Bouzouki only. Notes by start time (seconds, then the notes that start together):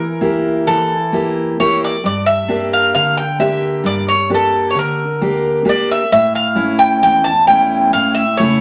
Already playing: A#4
0.67 A4
1.60 C#5
1.84 D5
2.06 D5
2.26 E5
2.73 F5
2.95 F5
3.17 G5
3.40 E5
3.86 D5
4.08 C#5
4.34 A4
4.71 C#5
4.79 A#4
5.69 D5
5.91 E5
6.12 E5
6.35 F5
6.79 G5
7.03 G5
7.24 A5
7.47 G5
7.93 F5
8.15 E5
8.37 C#5